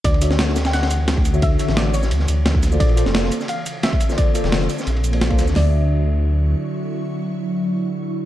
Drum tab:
RD |xxx-x-xxxxx-xxx-|x-x-x-x-x-x-x-x-|xxx-x-x-x-x-xxx-|x-x-x-x-xxxxxxx-|
HH |x-x-x-x-x-x-x-x-|x-x-x-o-x-x-x-x-|x-x-x-x-x-x-x-x-|x-x-x-o-x-x-x-x-|
SH |--x---xx--x---xx|--x---xx--x---xx|--x---xx--x---xx|--x---xx--x---xx|
SD |---ooooooo--o---|---oo--o-o--o-o-|---ooo-o----o--o|---ooo-o----o-oo|
FT |----------------|----------------|----------------|----------------|
BD |o------------o--|o------------o--|o------------o--|o------------o--|

RD |----------------|----------------|
HH |o---------------|----------------|
SH |----------------|----------------|
SD |o---------------|----------------|
FT |o---------------|----------------|
BD |----------------|----------------|